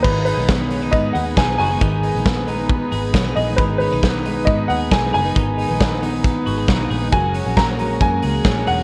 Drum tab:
CC |x-------|--------|--------|--------|
HH |-oxoxoxo|xoxo-oxo|xoxoxoxo|xoxoxoxo|
SD |--o---o-|--o---o-|--o---o-|--o---o-|
BD |o-o-o-o-|o-o-o-o-|o-o-o-o-|o-o-o-o-|

CC |--------|
HH |xoxoxoxo|
SD |--o---o-|
BD |o-o-o-o-|